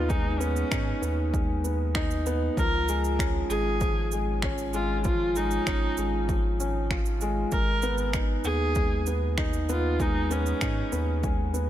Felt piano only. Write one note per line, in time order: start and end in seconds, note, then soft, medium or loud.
0.00 0.10 G#3 medium
0.00 0.40 B3 loud
0.00 0.71 D#4 loud
0.10 0.27 G#3 medium
0.40 0.70 B3 loud
0.71 1.01 D#4 medium
1.02 1.32 B3 medium
1.33 1.63 G#3 medium
1.64 1.94 B3 medium
1.95 2.25 D#4 loud
2.27 2.56 B3 loud
2.58 2.75 F3 loud
2.89 3.18 G#3 loud
3.20 3.49 C#4 medium
3.51 3.80 G#3 medium
3.82 4.11 F3 medium
4.13 4.42 G#3 medium
4.44 4.73 C#4 loud
4.74 5.03 G#3 loud
5.05 5.23 F3 loud
5.36 5.66 G#3 medium
5.67 5.96 C#4 medium
5.98 6.27 G#3 medium
6.29 6.58 F3 medium
6.60 6.89 C#4 medium
6.91 7.20 F4 medium
7.22 7.51 G#3 medium
7.52 7.70 G#3 medium
7.83 8.13 B3 loud
8.14 8.43 D#4 medium
8.45 8.74 B3 medium
8.76 9.06 G#3 medium
9.07 9.37 B3 medium
9.38 9.67 D#4 loud
9.69 9.98 B3 loud
10.00 10.17 G#3 loud
10.31 10.60 B3 medium
10.61 10.91 D#4 medium
10.92 11.22 B3 medium
11.24 11.53 G#3 medium
11.54 11.70 B3 medium